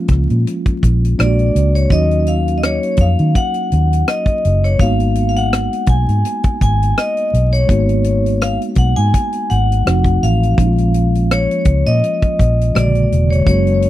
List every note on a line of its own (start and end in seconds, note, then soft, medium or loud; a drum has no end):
0.00 1.13 F3 medium
0.00 1.14 G#3 medium
0.00 1.14 A#3 medium
0.00 1.15 C#4 medium
0.00 1.15 F4 medium
0.08 0.26 C#2 medium
0.08 kick medium
0.08 cross-stick soft
0.08 closed hi-hat medium
0.30 0.44 A#2 medium
0.30 closed hi-hat soft
0.47 closed hi-hat medium
0.66 kick medium
0.66 closed hi-hat soft
0.83 1.13 A#1 medium
0.83 kick medium
0.83 closed hi-hat medium
1.05 closed hi-hat soft
1.18 1.49 A#1 medium
1.18 1.91 G#3 soft
1.18 1.89 A#3 soft
1.18 1.90 D4 medium
1.18 1.26 F4 soft
1.18 1.75 D5 medium
1.18 cross-stick medium
1.18 closed hi-hat medium
1.26 1.92 F#4 medium
1.39 closed hi-hat soft
1.55 1.85 C#2 medium
1.55 closed hi-hat medium
1.75 1.92 C#5 medium
1.75 closed hi-hat soft
1.89 2.78 D#2 medium
1.89 4.75 F#3 medium
1.89 4.75 A#3 medium
1.89 4.76 C#4 medium
1.89 4.76 D#4 medium
1.89 4.77 F#4 medium
1.89 2.28 D#5 medium
1.89 kick medium
1.89 closed hi-hat medium
2.11 closed hi-hat soft
2.27 2.58 F5 medium
2.27 closed hi-hat medium
2.48 closed hi-hat soft
2.58 2.63 D#5 medium
2.63 3.01 C#5 medium
2.63 cross-stick loud
2.63 closed hi-hat medium
2.83 closed hi-hat soft
2.97 3.15 F2 medium
2.97 kick medium
2.97 closed hi-hat medium
3.01 3.37 F5 medium
3.19 3.33 D#3 medium
3.19 closed hi-hat soft
3.35 4.10 F#5 medium
3.35 kick medium
3.35 closed hi-hat medium
3.54 closed hi-hat soft
3.72 4.02 D#2 medium
3.72 closed hi-hat medium
3.93 closed hi-hat soft
4.08 4.65 D#5 medium
4.08 cross-stick medium
4.08 closed hi-hat medium
4.26 kick medium
4.26 closed hi-hat soft
4.45 4.75 F#1 medium
4.45 closed hi-hat medium
4.64 4.79 C#5 medium
4.64 cross-stick soft
4.64 closed hi-hat soft
4.78 5.67 G#1 medium
4.78 7.64 G#3 medium
4.78 7.65 A#3 medium
4.78 7.65 B3 medium
4.78 7.65 D#4 medium
4.78 7.66 F#4 medium
4.78 5.28 F5 medium
4.78 kick loud
4.78 closed hi-hat medium
5.00 closed hi-hat soft
5.15 closed hi-hat medium
5.29 5.36 F5 medium
5.37 5.90 F#5 medium
5.37 closed hi-hat medium
5.53 cross-stick medium
5.53 closed hi-hat medium
5.73 closed hi-hat soft
5.86 6.04 B1 medium
5.86 6.57 G#5 medium
5.86 kick medium
5.86 closed hi-hat medium
6.08 6.22 G#2 medium
6.08 closed hi-hat soft
6.25 closed hi-hat medium
6.43 kick medium
6.43 closed hi-hat soft
6.61 6.92 G#1 medium
6.61 6.98 G#5 medium
6.61 kick medium
6.61 closed hi-hat medium
6.83 closed hi-hat soft
6.98 7.49 D#5 medium
6.98 cross-stick medium
6.98 closed hi-hat medium
7.17 closed hi-hat soft
7.33 7.63 B1 medium
7.33 closed hi-hat medium
7.53 8.44 C#5 medium
7.53 closed hi-hat soft
7.67 8.56 G#1 medium
7.67 9.81 G#3 medium
7.67 9.81 A#3 medium
7.67 9.82 B3 medium
7.67 9.82 D#4 medium
7.67 kick loud
7.67 closed hi-hat medium
7.71 9.83 F#4 medium
7.89 closed hi-hat soft
8.04 closed hi-hat medium
8.26 closed hi-hat soft
8.42 8.58 F5 medium
8.42 cross-stick loud
8.42 closed hi-hat medium
8.62 closed hi-hat soft
8.75 8.93 B1 medium
8.75 8.87 F#5 medium
8.75 kick medium
8.75 closed hi-hat medium
8.96 9.11 G#2 medium
8.96 9.51 G#5 medium
8.96 closed hi-hat soft
9.14 kick medium
9.14 closed hi-hat medium
9.33 closed hi-hat soft
9.50 9.81 G#1 medium
9.50 10.24 F#5 medium
9.50 closed hi-hat medium
9.72 closed hi-hat soft
9.85 10.17 F1 medium
9.85 10.55 F3 medium
9.85 10.58 A3 medium
9.85 10.58 C4 soft
9.85 10.58 D#4 soft
9.85 10.58 F#4 medium
9.85 cross-stick medium
9.85 closed hi-hat medium
10.04 kick medium
10.04 closed hi-hat soft
10.23 10.53 A1 medium
10.23 11.34 F5 medium
10.23 closed hi-hat medium
10.43 closed hi-hat soft
10.57 11.46 A#1 medium
10.57 12.70 F3 medium
10.57 12.71 G#3 medium
10.57 12.71 A#3 medium
10.57 12.71 C#4 medium
10.57 10.66 D#4 medium
10.57 kick loud
10.57 closed hi-hat medium
10.67 12.75 F4 medium
10.78 closed hi-hat soft
10.94 closed hi-hat medium
11.15 closed hi-hat soft
11.31 11.88 C#5 medium
11.31 cross-stick loud
11.31 closed hi-hat medium
11.51 closed hi-hat soft
11.65 11.82 C#2 medium
11.65 kick medium
11.65 closed hi-hat medium
11.87 12.01 A#2 medium
11.87 12.78 D#5 medium
11.87 closed hi-hat soft
12.04 closed hi-hat medium
12.22 kick medium
12.22 closed hi-hat soft
12.39 12.70 A#1 medium
12.39 kick medium
12.39 closed hi-hat medium
12.61 closed hi-hat soft
12.74 13.06 A#1 medium
12.74 13.47 C#3 medium
12.74 13.44 G#3 medium
12.74 13.46 A#3 soft
12.74 13.47 F#4 medium
12.74 13.32 D5 medium
12.74 cross-stick medium
12.74 closed hi-hat medium
12.80 13.50 D3 medium
12.95 closed hi-hat soft
13.12 13.42 E1 medium
13.12 closed hi-hat medium
13.30 13.46 C#5 medium
13.30 closed hi-hat soft
13.45 13.90 F#1 medium
13.45 13.90 F#3 medium
13.45 13.90 G#3 medium
13.45 13.90 A#3 medium
13.45 13.90 C#4 medium
13.45 13.90 F#4 medium
13.45 13.90 C#5 medium
13.45 kick loud
13.45 closed hi-hat medium
13.67 closed hi-hat soft
13.82 closed hi-hat medium